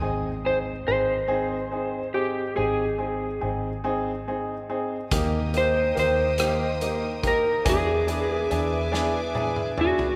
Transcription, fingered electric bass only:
\new Staff \with { instrumentName = "Fingered electric bass" } { \clef bass \time 6/8 \key ees \mixolydian \tempo 4. = 47 aes,,4 aes,,2 | aes,,4 aes,,2 | ees,4 ees,2 | e,4 e,2 | }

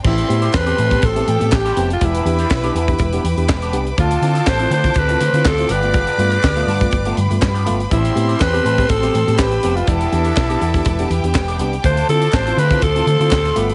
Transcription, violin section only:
\new Staff \with { instrumentName = "Violin section" } { \time 4/4 \key d \dorian \tempo 4 = 122 <c' c'''>2~ <c' c'''>8 <g' g''>4. | <b' b''>2~ <b' b''>8 <b' b''>4. | <a' a''>2~ <a' a''>8 <c'' c'''>4 <d'' d'''>8~ | <d'' d'''>2~ <d'' d'''>8 <b' b''>4. |
<c' c'''>2. <b' b''>4 | <a' a''>2~ <a' a''>8 <g' g''>4. | <a' a''>4. <c'' c'''>2 <b' b''>8 | }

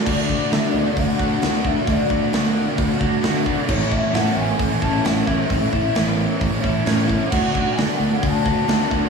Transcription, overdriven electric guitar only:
\new Staff \with { instrumentName = "Overdriven electric guitar" } { \time 4/4 \key d \major \tempo 4 = 132 <d a d' fis'>8 <a d' fis'>8 <d a d' fis'>4. <a d' fis'>8 <d a d' fis'>8 <a d' fis'>8 | <d a d' fis'>8 <a d' fis'>8 <d a d' fis'>4. <a d' fis'>8 <d a d' fis'>8 <a d' fis'>8 | <a, e a cis' e'>8 <a cis' e'>8 <e a cis' e'>4. <a cis' e'>8 <e a cis' e'>8 <a cis' e'>8 | <a, e a cis' e'>8 <a cis' e'>8 <e a cis' e'>4. <a cis' e'>8 <e a cis' e'>8 <a cis' e'>8 |
<d a d' fis'>8 <a d' fis'>8 <d a d' fis'>4. <a d' fis'>8 <d a d' fis'>8 <a d' fis'>8 | }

